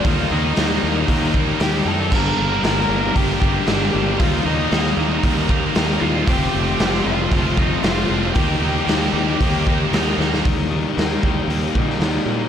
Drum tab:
CC |----------------|x---------------|----------------|----------------|
HH |o---o---o---o---|----o---o---o---|o---o---o---o---|o---o---o---o---|
SD |----o-------o---|----oo------o---|----oo------o---|----oo------o---|
BD |o-------o-o-----|o-------o-o-----|o-------o-o-----|o-------o-o-----|

CC |----------------|----------------|
HH |o---o---o---o---|o---o---o---o---|
SD |----o-------o-oo|----o------oo---|
BD |o-------o-o-----|o-----o---o-----|